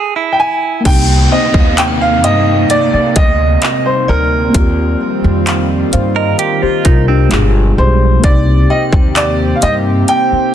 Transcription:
Already playing: clean electric guitar G#4
0.16 clean electric guitar E4
0.33 grand piano G5
0.40 grand piano G#5
0.80 synth keys A#3 C4
0.85 upright bass C2, analog synth pad C3 A#3 C4 D#4, synth keys D#4, grand piano G5, kick, closed hi-hat, crash, downlifter
0.90 synth keys G4
1.32 synth bell C5, grand piano D#5
1.54 upright bass D#2, kick
1.60 synth bell F5
1.78 grand piano G5, clap, closed hi-hat
1.88 synth bell G5
2.01 grand piano F5
2.24 upright bass G2, grand piano D#5, synth bell F5, closed hi-hat
2.70 grand piano D5, closed hi-hat
2.94 grand piano D5, muted upright bass stroke
3.16 upright bass D2, grand piano D#5, kick, closed hi-hat
3.62 clap, closed hi-hat
3.86 grand piano C5
4.08 upright bass D2, grand piano A#4, synth bell D5
4.50 synth keys A#3 C4
4.54 upright bass D#2, analog synth pad D#3 G3 F4, synth keys F4, kick, closed hi-hat
4.59 synth keys G4
5.24 upright bass F2
5.47 clap, closed hi-hat
5.93 upright bass G2, synth keys C5 F5, closed hi-hat
6.16 clean electric guitar A#4, synth keys A#4 D#5
6.39 clean electric guitar G4, closed hi-hat
6.62 clean electric guitar F4, synth keys G4 C5, muted upright bass stroke
6.85 upright bass C2, clean electric guitar D#4, synth keys F4 A#4, kick, closed hi-hat
7.08 clean electric guitar C4, synth keys D4 G4
7.29 upright bass G1, analog synth pad B2 F3 G3 G#3, synth keys G#3 D4 F4, clap, closed hi-hat
7.33 synth keys B2 G#4
7.78 upright bass B1, grand piano C5
8.19 synth keys A#3 C4
8.24 upright bass C2, analog synth pad C3 A#3 C4 G4, synth keys D#4, grand piano D5, kick, closed hi-hat
8.28 synth keys G4
8.70 grand piano D#5, synth bell G5
8.93 upright bass D#2, kick
9.16 grand piano D5, clap, closed hi-hat
9.56 grand piano F5
9.62 upright bass G2, grand piano D#5, closed hi-hat
10.08 grand piano G5, closed hi-hat
10.32 muted upright bass stroke

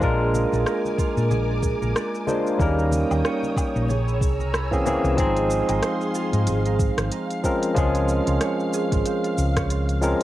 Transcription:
Already playing: harp F4 G#4 C5
0.00 fingered electric bass A#1, tine electric piano G#3 A#3 D4 F4 A#4, harp D4, string machine A#4 G#5 D6, kick, cabasa
0.21 harp G#4
0.34 high conga, cabasa
0.52 fingered electric bass A#1, harp D4, low conga, cabasa
0.66 harp A#4, cross-stick, cabasa
0.85 high conga, cabasa
0.98 harp F4, kick, cabasa
1.17 fingered electric bass A#2, harp D4, cabasa
1.31 fingered electric bass A#1, harp G#4, high conga, cabasa
1.50 harp D4
1.63 kick, cabasa
1.82 fingered electric bass A#1, harp A#4, high conga, cabasa
1.95 harp D4, cross-stick, cabasa
2.15 cabasa
2.27 tine electric piano G#3 A#3 D4 F4 C5, harp G#4, high conga, cabasa
2.47 cabasa
2.58 fingered electric bass D#2, tine electric piano G3 A#3 C#4 D#4 A#4, harp D#4, string machine C#5 G5 D#6, kick, cabasa
2.78 harp A#4, cabasa
2.91 high conga, cabasa
3.11 fingered electric bass D#2, harp D#4, cabasa, low woodblock
3.25 harp C#5, cross-stick, cabasa
3.43 high conga, cabasa
3.57 harp G4, kick, cabasa, low woodblock
3.76 fingered electric bass A#1, harp D#4, cabasa
3.88 harp G#4, string machine G#5 A#5 E6, high conga, cabasa
4.07 harp E4, cabasa
4.21 fingered electric bass C2, kick, cabasa
4.40 harp A#4, high conga, cabasa
4.53 harp E4, cross-stick, cabasa
4.71 tine electric piano E3 A#3 C4 C#4 G#4, kick, cabasa
4.85 tine electric piano E3 A#3 C4 C#4 G#4, harp E4, high conga, low conga, cabasa
5.04 fingered electric bass C2, cabasa
5.16 fingered electric bass G#1, tine electric piano F3 G#3 C4 D#4 G#4, harp D#4, string machine G#4 F5 C6, kick, closed hi-hat, cabasa
5.37 harp G#4, closed hi-hat, cabasa
5.50 cabasa
5.69 fingered electric bass G#1, harp D#4, closed hi-hat, cabasa, low woodblock
5.82 harp C5, cross-stick, closed hi-hat, cabasa
6.01 cabasa
6.15 harp F4, cabasa
6.33 fingered electric bass G#2, harp D#4, closed hi-hat, cabasa
6.47 fingered electric bass G#1, harp G#4, closed hi-hat, cabasa
6.66 harp D#4, closed hi-hat, cabasa
6.79 kick, cabasa
6.98 fingered electric bass G#1, harp C5, cross-stick, closed hi-hat, cabasa
7.12 harp D#4, closed hi-hat, cabasa
7.31 closed hi-hat, cabasa
7.43 tine electric piano F3 G#3 C4 C#4 A#4, harp C5, kick, cabasa
7.63 closed hi-hat, cabasa
7.74 fingered electric bass C#2, tine electric piano F3 G#3 C#4 G#4, harp F4, kick, closed hi-hat, cabasa
7.95 harp C5, closed hi-hat, cabasa
8.09 cabasa
8.27 fingered electric bass C#2, harp F4, closed hi-hat, cabasa
8.41 harp C#5, cross-stick, closed hi-hat, cabasa
8.60 cabasa
8.73 harp G#4, cabasa
8.92 fingered electric bass G#1, harp F4, kick, closed hi-hat, cabasa
9.06 harp C5, closed hi-hat, cabasa
9.24 harp F4, closed hi-hat, cabasa
9.38 fingered electric bass C#2, cabasa
9.57 harp C#5, kick, cross-stick, closed hi-hat, cabasa
9.70 harp F4, closed hi-hat, cabasa
9.89 closed hi-hat, cabasa
10.01 tine electric piano F3 G#3 C4 C#4 A#4, harp C5, cabasa

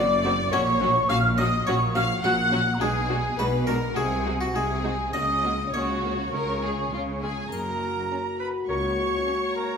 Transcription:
Already playing: double bass section F#1, cello section F#2, harpsichord D5, violin section D5, flute section D6
0.24 viola section D#3 C4, violin section F#4
0.52 double bass section A#1, cello section A#2, viola section F#3 C#4, violin section F#4 C#5, harpsichord C#5, flute section C#6
0.80 viola section F#3 C#4, violin section F#4
1.09 double bass section A#1, cello section A#2, viola section F#3 C#4, violin section F#4 F5, harpsichord F5, flute section F6
1.38 viola section F#3 C#4, violin section F#4 D#5, harpsichord D#5, flute section D#6
1.67 double bass section A#1, cello section A#2, viola section F#3 C#4, violin section F#4 C#5, harpsichord C#5, flute section C#6
1.95 viola section F#3 C#4, violin section F#4 F5, harpsichord F5, flute section F6
2.24 double bass section A#1, cello section A#2, viola section F#3 C#4, violin section F#4 F#5, harpsichord F#5, flute section F#6
2.52 viola section F#3 C#4, violin section F#4
2.74 flute section A#5
2.80 double bass section B1, cello section B2, viola section G#3 D4, violin section F#4 G#4, harpsichord G#4, flute section G#5
3.09 viola section G#3 D4, violin section F#4
3.38 double bass section B1, cello section B2, viola section G#3 D4, violin section F#4 B4, harpsichord B4, flute section B5
3.67 viola section G#3 D4, violin section F#4 A#4, harpsichord A#4, flute section A#5
3.95 double bass section C2, cello section C3, viola section G#3 D#4, violin section F#4 G#4, harpsichord G#4, flute section G#5
4.25 viola section G#3 D#4, violin section F#4
4.41 harpsichord F#4, violin section F#4, flute section F#5
4.54 double bass section C2, cello section C3, viola section G#3 D#4, violin section F#4 G#4, harpsichord G#4, flute section G#5
4.83 viola section G#3 D#4, violin section F#4
5.13 double bass section C#2, cello section C#3, viola section A#3 C#4, violin section F#4 D#5, harpsichord D#5, flute section D#6
5.43 viola section A#3 C#4, violin section F#4
5.73 double bass section C#2, cello section C#3, viola section A#3 C#4, violin section F#4 C#5, harpsichord C#5, flute section C#6
6.04 viola section A#3 C#4
6.33 double bass section C#2, cello section C#3, viola section G#3 C#4, violin section A#4
6.63 viola section G#3 C#4, violin section G#4
6.92 double bass section C#2, cello section C#3, viola section G#3 C#4, violin section F4
7.22 viola section G#3 C#4, violin section G#4 G#5, clarinet G#4, flute section G#5
7.51 double bass section F#1, cello section F#2, french horn section A#3 F#4, clarinet A#4, violin section A#5, flute section A#5, triangle
8.12 violin section C#4
8.39 clarinet B4, flute section B5, violin section B5
8.68 cello section C#2, double bass section C#2, viola section A#4, clarinet C#5, violin section C#6, flute section C#6
8.98 viola section C#5
9.27 violin section C#4
9.55 clarinet A#4, flute section A#5, violin section A#5

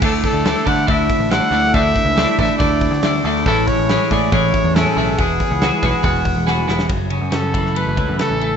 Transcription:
0.01 picked electric bass D2, clean electric guitar D3 A3 D4 E4, trumpet A4, kick, crash
0.24 trumpet A4, kick, open hi-hat
0.33 picked electric bass D2
0.45 clean electric guitar D3 A3 D4 E4, snare, open hi-hat
0.65 clean electric guitar D3 A3 D4 E4, picked electric bass D3, trumpet F#5, kick, open hi-hat
0.87 picked electric bass D2, clean electric guitar D3 A3 D4 E4, trumpet E5, kick, open hi-hat
1.10 kick, open hi-hat
1.19 picked electric bass A1
1.30 clean electric guitar D3 A3 D4 E4, trumpet F#5, snare, open hi-hat
1.51 picked electric bass D2, clean electric guitar D3 A3 D4 E4, open hi-hat
1.64 snare
1.73 picked electric bass D2, clean electric guitar D3 A3 D4 E4, trumpet E5, kick, open hi-hat
1.96 kick, open hi-hat
2.05 picked electric bass C#2
2.16 clean electric guitar D3 A3 D4 E4, snare, open hi-hat
2.38 picked electric bass A1, clean electric guitar D3 A3 D4 E4, trumpet E5, kick, open hi-hat
2.58 picked electric bass D2, clean electric guitar D3 A3 D4 E4, trumpet D5, kick, open hi-hat
2.81 kick, open hi-hat
2.91 picked electric bass D2, snare
3.03 clean electric guitar D3 A3 D4 E4, snare, open hi-hat
3.24 picked electric bass D2, clean electric guitar D3 A3 D4 E4, open hi-hat
3.36 snare
3.46 picked electric bass A1, clean electric guitar A2 E3 G#3 C#4 E4, trumpet A4, kick, open hi-hat
3.67 trumpet C#5, kick, open hi-hat
3.78 picked electric bass A1
3.88 clean electric guitar A2 E3 G#3 C#4 E4, snare, open hi-hat
4.10 clean electric guitar A2 E3 G#3 C#4 E4, picked electric bass A2, trumpet D5, kick, open hi-hat
4.32 picked electric bass A1, clean electric guitar A2 E3 G#3 C#4 E4, trumpet C#5, kick, open hi-hat
4.54 kick, open hi-hat
4.64 picked electric bass E2
4.75 clean electric guitar A2 E3 G#3 C#4 E4, trumpet A4, snare, open hi-hat
4.96 picked electric bass B1, clean electric guitar A2 E3 G#3 C#4 E4, open hi-hat
5.18 picked electric bass E1, clean electric guitar E3 G#3 B3 F#4, trumpet G#4, kick, open hi-hat
5.40 kick, open hi-hat
5.51 picked electric bass C#2
5.61 clean electric guitar E3 G#3 B3 F#4, snare, open hi-hat
5.82 picked electric bass B1, clean electric guitar E3 G#3 B3 F#4, kick, open hi-hat
6.03 picked electric bass E1, clean electric guitar E3 G#3 B3 F#4, kick, open hi-hat
6.25 kick, open hi-hat
6.36 picked electric bass E1
6.46 clean electric guitar E3 G#3 B3 F#4, snare
6.67 picked electric bass E1, clean electric guitar E3 G#3 B3 F#4, snare
6.79 snare
6.88 picked electric bass F#1, clean electric guitar F#2, kick, ride
7.10 clean electric guitar C#3, ride
7.21 picked electric bass F#2
7.31 clean electric guitar C#3, trumpet A4, snare, ride
7.54 clean electric guitar E3, kick, ride
7.66 snare
7.75 clean electric guitar A3, trumpet B4, ride
7.87 picked electric bass F#1
7.96 picked electric bass C#2, clean electric guitar E3, kick, ride
8.09 picked electric bass F#2
8.19 clean electric guitar C#3, trumpet A4, snare, ride
8.30 picked electric bass A1
8.40 clean electric guitar A3, ride

